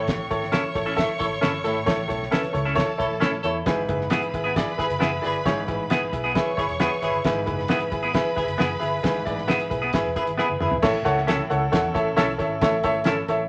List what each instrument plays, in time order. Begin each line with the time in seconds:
Already playing: upright piano A2 E4 A4 C#5, violin section C#5 C#6
0.08 fingered electric bass A1, kick, snare, closed hi-hat
0.30 fingered electric bass G#1, upright piano E4 A4 C#5, kick, closed hi-hat
0.43 snare
0.52 clean electric guitar C#4 E4 A4, upright piano E4 A4 C#5, snare, closed hi-hat
0.64 muted fingered electric bass stroke
0.75 fingered electric bass A1, upright piano E4 A4 C#5, kick, closed hi-hat
0.86 clean electric guitar C#4 E4 A4
0.96 upright piano E4 A4 E5, kick, snare, closed hi-hat
1.19 fingered electric bass A1, upright piano E4 A4 C#5, horn section E4 A4 C#5, kick, closed hi-hat
1.30 fingered electric bass G#1
1.41 fingered electric bass G1, clean electric guitar C#4 E4 A4, upright piano E4 A4 C#5, horn section E4 A4 C#5, snare, closed hi-hat
1.64 fingered electric bass G#1, upright piano A2 E4 A4 E5, horn section E4 A4 C#5, closed hi-hat
1.86 fingered electric bass A1, upright piano E4 A4 C#5, kick, snare, closed hi-hat
2.08 fingered electric bass B1, upright piano E4 A4 C#5, kick, closed hi-hat
2.23 snare
2.31 clean electric guitar C#4 E4 A4, upright piano E4 A4 B4, snare, closed hi-hat
2.43 muted fingered electric bass stroke, closed hi-hat
2.52 fingered electric bass C#2, upright piano E4 A4 C#5, kick, closed hi-hat
2.65 clean electric guitar C#4 E4 A4
2.75 upright piano E4 A4 C#5, violin section A4 A5, kick, snare, closed hi-hat
2.98 fingered electric bass B1, upright piano E4 A4 C#5, horn section E4 A4 C#5, kick, closed hi-hat
3.10 fingered electric bass A1
3.20 fingered electric bass A2, clean electric guitar C#4 E4 A4, upright piano E4 A4 C#5, horn section E4 A4 C#5, snare, closed hi-hat
3.43 fingered electric bass E2, horn section E4 A4 C#5, upright piano E4 A4 C#5, closed hi-hat
3.66 fingered electric bass G#1, upright piano G#2 E4 G#4 B4, violin section B4 B5, kick, snare, closed hi-hat
3.88 fingered electric bass F#1, upright piano E4 G#4 B4, kick, closed hi-hat
4.01 snare
4.10 clean electric guitar B3 E4 G#4, upright piano E4 G#4 B4, snare, closed hi-hat
4.22 muted fingered electric bass stroke, closed hi-hat
4.34 fingered electric bass G#1, upright piano E4 G#4 B4, kick, closed hi-hat
4.44 clean electric guitar B3 E4 G#4
4.55 upright piano E4 G#4 D5, kick, snare, closed hi-hat
4.78 fingered electric bass G#1, upright piano E4 G#4 B4, horn section E4 G#4 B4, kick, closed hi-hat
4.90 fingered electric bass F#1, closed hi-hat
4.99 fingered electric bass F#1, clean electric guitar B3 E4 G#4, upright piano E4 G#4 B4, horn section E4 G#4 B4, snare, closed hi-hat
5.22 fingered electric bass G1, upright piano E4 G#4 D5, horn section G#4 B4, closed hi-hat
5.26 horn section E4
5.45 fingered electric bass G#1, upright piano G#2 E4 G#4 C#5, kick, snare, closed hi-hat
5.67 fingered electric bass A1, upright piano E4 G#4 B4, kick, closed hi-hat
5.90 clean electric guitar B3 E4 G#4, upright piano E4 G#4 B4, snare, closed hi-hat
6.03 muted fingered electric bass stroke
6.12 fingered electric bass B1, upright piano E4 G#4 B4, kick, closed hi-hat
6.24 clean electric guitar B3 E4 G#4
6.35 upright piano E4 G#4 B4, violin section C#5 C#6, kick, snare, closed hi-hat
6.57 fingered electric bass G#1, upright piano E4 G#4 C#5, horn section E4 G#4 B4, kick, closed hi-hat
6.69 fingered electric bass E1, closed hi-hat
6.79 clean electric guitar B3 E4 G#4, upright piano E4 G#4 B4, horn section E4 G#4 B4, snare, closed hi-hat
7.02 fingered electric bass G#1, upright piano E4 G#4 B4, horn section E4 G#4 B4, closed hi-hat
7.14 fingered electric bass G1
7.24 fingered electric bass G#1, upright piano G#2 E4 G#4 B4, violin section B4 B5, kick, snare, closed hi-hat
7.46 fingered electric bass F#1, upright piano E4 G#4 B4, kick, closed hi-hat
7.60 snare
7.68 clean electric guitar B3 E4 G#4, upright piano E4 G#4 B4, snare, closed hi-hat
7.80 muted fingered electric bass stroke, closed hi-hat
7.92 fingered electric bass G#1, upright piano E4 G#4 B4, kick, closed hi-hat
8.03 clean electric guitar B3 E4 G#4
8.14 upright piano E4 G#4 B4, kick, snare, closed hi-hat
8.36 fingered electric bass G#1, upright piano E4 G#4 B4, horn section E4 G#4 B4, kick, closed hi-hat
8.47 fingered electric bass F#1, closed hi-hat
8.58 fingered electric bass F#1, clean electric guitar B3 E4 G#4, upright piano E4 G#4 B4, horn section E4 G#4 B4, snare, closed hi-hat
8.79 fingered electric bass G1, horn section E4 G#4 B4, upright piano E4 G#4 B4, closed hi-hat
9.03 fingered electric bass G#1, upright piano G#2 E4 G#4 B4, kick, snare, closed hi-hat
9.25 fingered electric bass A1, upright piano E4 G#4 D5, kick, closed hi-hat
9.39 snare
9.48 clean electric guitar B3 E4 G#4, upright piano E4 G#4 B4, snare, closed hi-hat
9.59 muted fingered electric bass stroke, closed hi-hat
9.70 fingered electric bass B1, upright piano E4 G#4 B4, kick, closed hi-hat
9.82 clean electric guitar B3 E4 G#4
9.93 fingered electric bass G#1, upright piano E4 G#4 B4, kick, snare, closed hi-hat
10.05 fingered electric bass E1
10.16 upright piano E4 G#4 B4, horn section E4 G#4 B4, kick, closed hi-hat
10.27 fingered electric bass G#1, closed hi-hat
10.38 clean electric guitar B3 E4 G#4, upright piano E4 G#4 B4, horn section E4 G#4 B4, snare
10.50 fingered electric bass F#1
10.60 fingered electric bass G1, upright piano E4 G#4 B4, horn section E4 G#4 B4, mid tom
10.71 fingered electric bass G#1, floor tom
10.82 fingered electric bass A1, upright piano A2 E4 A4 C#5 E5, horn section C#4 E4 A4, kick, snare, crash
11.05 fingered electric bass C#2, upright piano E4 A4 C#5 F#5, kick, closed hi-hat
11.18 snare
11.27 clean electric guitar C#4 E4 A4, upright piano E4 A4 C#5 E5, snare, closed hi-hat
11.50 fingered electric bass C#2, upright piano E4 A4 C#5 F#5, closed hi-hat
11.72 fingered electric bass E2, upright piano E4 A4 C#5 F#5, kick, snare, closed hi-hat
11.94 fingered electric bass A1, upright piano E4 A4 C#5 E5, kick, closed hi-hat
12.16 fingered electric bass B1, clean electric guitar C#4 E4 A4, upright piano E4 A4 C#5 E5, snare, closed hi-hat
12.38 fingered electric bass G#1, upright piano E4 A4 C#5 E5, kick, closed hi-hat
12.61 fingered electric bass A1, upright piano A3 E4 A4 C#5 E5, kick, snare, closed hi-hat
12.83 fingered electric bass G#1, upright piano E4 A4 C#5 E5, kick, closed hi-hat
13.04 clean electric guitar C#4 E4 A4, upright piano E4 A4 C#5 E5, snare, closed hi-hat
13.28 fingered electric bass A1, upright piano E4 A4 C#5 E5, closed hi-hat